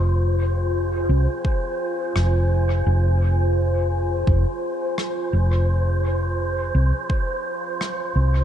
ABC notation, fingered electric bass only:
X:1
M:4/4
L:1/8
Q:1/4=85
K:Fm
V:1 name="Fingered electric bass" clef=bass
F,,,3 C,, z2 F,,,2 | F,,,4 F,,, z2 F,,,- | F,,,3 C,, z3 C,, |]